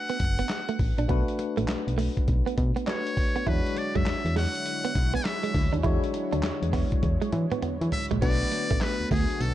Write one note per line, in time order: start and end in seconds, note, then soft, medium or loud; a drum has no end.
0.00 1.05 A3 medium
0.00 1.05 D4 medium
0.00 1.06 F#4 medium
0.00 1.06 B4 medium
0.00 0.80 F#5 loud
0.00 3.49 G#5 medium
0.09 0.17 B3 medium
0.09 closed hi-hat medium
0.20 0.42 F#1 medium
0.20 muted clean electric guitar stroke soft
0.20 kick medium
0.20 closed hi-hat medium
0.39 0.46 B3 medium
0.39 closed hi-hat medium
0.49 snare loud
0.49 clap medium
0.49 closed hi-hat medium
0.69 0.76 A3 medium
0.69 closed hi-hat medium
0.79 0.93 A1 medium
0.79 muted clean electric guitar stroke soft
0.79 kick loud
0.79 open hi-hat medium
0.98 1.06 A#1 medium
0.98 1.06 D4 medium
0.98 closed hi-hat medium
1.08 1.23 B1 loud
1.08 2.83 A3 medium
1.08 1.22 B3 medium
1.08 2.84 D4 medium
1.08 2.84 F#4 medium
1.08 2.85 B4 medium
1.08 kick loud
1.08 closed hi-hat medium
1.28 closed hi-hat medium
1.39 muted clean electric guitar stroke soft
1.39 closed hi-hat medium
1.57 1.65 A1 medium
1.57 1.65 A3 medium
1.57 closed hi-hat medium
1.68 1.76 B1 soft
1.68 snare loud
1.68 clap loud
1.68 closed hi-hat medium
1.87 2.09 B1 medium
1.87 closed hi-hat medium
1.98 2.11 A3 medium
1.98 open hi-hat medium
2.17 kick medium
2.17 closed hi-hat soft
2.28 2.42 B1 loud
2.28 kick medium
2.28 closed hi-hat medium
2.46 2.54 B3 medium
2.46 closed hi-hat medium
2.58 2.71 B2 loud
2.58 muted clean electric guitar stroke soft
2.58 kick medium
2.58 closed hi-hat medium
2.76 2.84 B3 medium
2.76 closed hi-hat medium
2.87 3.47 A3 soft
2.87 3.00 D4 medium
2.87 3.46 D4 soft
2.87 3.46 F#4 soft
2.87 3.47 B4 medium
2.87 3.49 C#5 medium
2.87 snare loud
2.87 clap medium
2.87 closed hi-hat medium
3.07 closed hi-hat medium
3.17 muted clean electric guitar stroke soft
3.17 kick loud
3.17 open hi-hat medium
3.36 3.43 B3 medium
3.36 closed hi-hat medium
3.46 3.61 E2 loud
3.46 8.18 D3 medium
3.46 3.55 F#3 medium
3.46 8.18 F#3 medium
3.46 8.18 G#3 medium
3.46 5.80 D4 medium
3.46 3.60 E4 medium
3.46 8.18 E4 medium
3.46 5.81 F#4 medium
3.46 3.79 B4 loud
3.46 8.18 C#5 medium
3.46 5.81 C#5 medium
3.46 kick loud
3.46 closed hi-hat medium
3.53 5.82 G#3 medium
3.66 closed hi-hat medium
3.76 3.98 D5 medium
3.76 muted clean electric guitar stroke soft
3.76 closed hi-hat medium
3.95 4.03 F#2 medium
3.95 4.03 G#3 medium
3.95 4.36 E5 medium
3.95 kick medium
3.95 closed hi-hat medium
4.06 4.14 E2 soft
4.06 snare loud
4.06 clap medium
4.06 closed hi-hat medium
4.25 4.46 E2 medium
4.25 closed hi-hat medium
4.36 4.49 G#3 medium
4.36 5.11 F#5 loud
4.36 snare medium
4.36 open hi-hat medium
4.55 closed hi-hat soft
4.66 closed hi-hat medium
4.85 4.92 B3 medium
4.85 closed hi-hat medium
4.95 5.17 B1 medium
4.95 muted clean electric guitar stroke soft
4.95 kick medium
4.95 closed hi-hat medium
5.14 5.21 B3 medium
5.14 5.27 G#5 loud
5.14 closed hi-hat medium
5.25 5.74 E5 loud
5.25 snare loud
5.25 clap medium
5.25 closed hi-hat medium
5.43 5.51 G#3 medium
5.43 closed hi-hat medium
5.54 5.68 D2 loud
5.54 muted clean electric guitar stroke soft
5.54 kick loud
5.54 open hi-hat medium
5.73 5.81 D#2 medium
5.73 5.80 D4 medium
5.73 closed hi-hat soft
5.83 5.98 E2 loud
5.83 8.18 G#3 medium
5.83 8.18 D4 medium
5.83 5.97 E4 medium
5.83 8.19 F#4 medium
5.83 8.19 C#5 medium
5.83 kick loud
5.83 closed hi-hat medium
6.04 closed hi-hat medium
6.14 muted clean electric guitar stroke soft
6.14 closed hi-hat medium
6.33 6.41 D2 medium
6.33 6.40 D4 medium
6.33 closed hi-hat medium
6.43 snare loud
6.43 clap medium
6.43 closed hi-hat medium
6.62 6.84 E2 medium
6.62 closed hi-hat medium
6.73 6.86 B3 medium
6.73 kick medium
6.73 snare medium
6.73 open hi-hat medium
6.92 kick medium
6.92 closed hi-hat soft
7.03 7.17 E2 loud
7.03 kick medium
7.03 closed hi-hat medium
7.03 high tom medium
7.22 7.29 G#3 medium
7.22 closed hi-hat medium
7.32 7.46 E3 loud
7.32 muted clean electric guitar stroke soft
7.32 closed hi-hat medium
7.32 mid tom medium
7.52 7.59 B3 medium
7.52 closed hi-hat medium
7.52 mid tom medium
7.62 7.76 B3 medium
7.62 closed hi-hat medium
7.62 mid tom medium
7.81 7.89 E3 loud
7.81 closed hi-hat medium
7.92 8.06 E5 loud
7.92 muted clean electric guitar stroke soft
7.92 floor tom loud
7.92 open hi-hat medium
8.11 8.19 A#1 medium
8.11 8.18 G#3 medium
8.11 closed hi-hat soft
8.11 floor tom medium
8.21 8.44 B1 loud
8.21 9.54 D3 medium
8.21 9.54 F#3 medium
8.21 9.54 A3 medium
8.21 8.35 B3 medium
8.21 9.54 B3 medium
8.21 9.54 D4 medium
8.21 9.54 F#4 medium
8.21 9.54 B4 medium
8.21 8.84 D5 loud
8.21 kick loud
8.21 closed hi-hat medium
8.21 crash loud
8.21 tambourine medium
8.52 muted clean electric guitar stroke soft
8.52 closed hi-hat medium
8.52 tambourine medium
8.70 8.79 A1 medium
8.70 8.78 A3 medium
8.70 kick loud
8.70 closed hi-hat medium
8.81 9.11 B4 loud
8.81 snare loud
8.81 clap medium
8.81 closed hi-hat medium
8.81 tambourine medium
9.00 9.04 D2 soft
9.11 9.25 D2 loud
9.11 9.24 A3 medium
9.11 9.43 G#4 medium
9.11 kick loud
9.11 open hi-hat medium
9.11 tambourine medium
9.30 closed hi-hat soft
9.40 9.54 B1 loud
9.40 9.54 A4 loud
9.40 closed hi-hat medium
9.40 tambourine medium